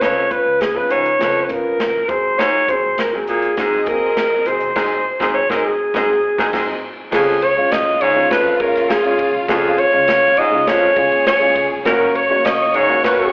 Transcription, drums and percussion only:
0.01 kick, snare, closed hi-hat
0.31 kick, closed hi-hat
0.61 snare, closed hi-hat
0.90 closed hi-hat
1.06 closed hi-hat
1.21 kick, snare, closed hi-hat
1.49 kick, closed hi-hat
1.80 snare, closed hi-hat
2.09 kick, closed hi-hat
2.39 snare, closed hi-hat
2.68 kick, closed hi-hat
2.98 snare, closed hi-hat
3.27 closed hi-hat
3.42 closed hi-hat
3.57 kick, snare, closed hi-hat
3.86 kick, closed hi-hat
4.17 snare, closed hi-hat
4.46 closed hi-hat
4.60 closed hi-hat
4.76 kick, snare, crash
5.20 kick, snare
5.50 kick, snare
5.94 kick, snare
6.38 kick, snare
6.53 kick, snare, crash
7.12 kick, snare, crash
7.42 ride
7.71 snare, ride
8.01 ride
8.31 kick, snare, ride
8.60 kick, ride
8.75 snare, ride
8.90 snare, ride
9.04 ride
9.19 kick, ride
9.48 kick, snare, ride
9.78 ride
10.08 snare, ride
10.37 ride
10.67 kick, snare, ride
10.96 kick, ride
11.12 ride
11.27 snare, ride
11.41 ride
11.56 kick, ride
11.85 kick, snare, ride
12.15 ride
12.45 snare, ride
12.74 ride
13.04 kick, snare, ride

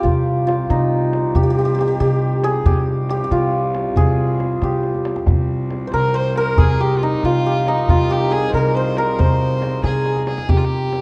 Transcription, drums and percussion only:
0.04 tombak dum
0.26 tombak ka
0.49 tombak tek
0.70 tombak tek
1.13 tombak tek
1.35 tombak dum
1.57 tombak ka
1.79 tombak tek
2.00 tombak tek
2.44 tombak tek
2.66 tombak dum
2.87 tombak ka
3.09 tombak tek
3.31 tombak tek
3.75 tombak tek
3.96 tombak dum
4.18 tombak ka
4.40 tombak tek
4.62 tombak tek
4.83 tombak tek
4.94 tombak ka
5.05 tombak tek
5.16 tombak ka
5.27 tombak dum
5.49 tombak ka
5.70 tombak tek
5.92 tombak tek
6.36 tombak tek
6.58 tombak dum
7.01 tombak tek
7.23 tombak tek
7.67 tombak tek
7.89 tombak dum
8.10 tombak ka
8.32 tombak tek
8.54 tombak tek
8.97 tombak tek
9.19 tombak dum
9.62 tombak tek
9.84 tombak tek
10.05 tombak tek
10.16 tombak ka
10.27 tombak tek
10.38 tombak ka
10.49 tombak dum
10.70 tombak ka
10.93 tombak tek

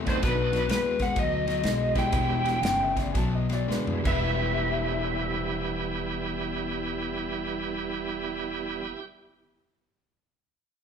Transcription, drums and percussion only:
0.07 kick, snare, ride
0.23 kick, snare, ride
0.53 snare, ride
0.69 snare, ride
0.99 kick, snare, ride
1.16 kick, ride
1.47 snare, ride
1.63 snare, ride
1.95 kick, snare, ride
2.12 kick, ride
2.46 snare, ride
2.63 snare, ride
2.97 kick, snare, ride
3.15 kick, snare, ride
3.49 snare, ride
3.71 snare
3.87 mid tom
4.05 kick, crash

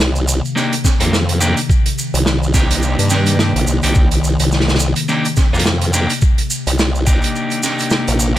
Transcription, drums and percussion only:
0.00 snare, maracas
0.16 maracas
0.28 maracas
0.45 maracas
0.56 snare, maracas
0.73 closed hi-hat, maracas
0.85 kick, snare, maracas
1.00 closed hi-hat, maracas
1.13 snare, maracas
1.29 closed hi-hat
1.41 maracas
1.57 closed hi-hat, maracas
1.70 kick, maracas
1.86 closed hi-hat
1.98 maracas
2.14 closed hi-hat, maracas
2.26 snare, maracas
2.43 maracas
2.54 kick, snare, maracas
2.71 closed hi-hat, maracas
2.82 maracas
2.99 closed hi-hat, maracas
3.10 snare, maracas
3.26 closed hi-hat, maracas
3.39 snare, maracas
3.56 closed hi-hat
3.67 maracas
3.82 closed hi-hat, maracas
3.95 kick, maracas
4.11 closed hi-hat
4.24 maracas
4.39 closed hi-hat, maracas
4.52 snare, maracas
4.61 snare
4.68 snare, maracas
4.75 snare
4.79 snare, maracas
4.96 closed hi-hat, maracas
5.08 snare, maracas
5.25 closed hi-hat, maracas
5.36 kick, snare, maracas
5.54 maracas
5.59 closed hi-hat
5.66 snare, maracas
5.81 closed hi-hat
5.93 maracas
6.09 closed hi-hat, maracas
6.21 kick, maracas
6.38 closed hi-hat
6.50 maracas
6.67 closed hi-hat, maracas
6.78 snare, maracas
6.95 maracas
7.07 kick, maracas
7.22 closed hi-hat, maracas
7.36 maracas
7.50 closed hi-hat, maracas
7.63 snare, maracas
7.79 closed hi-hat, maracas
7.90 snare, maracas
8.08 closed hi-hat, maracas
8.20 maracas

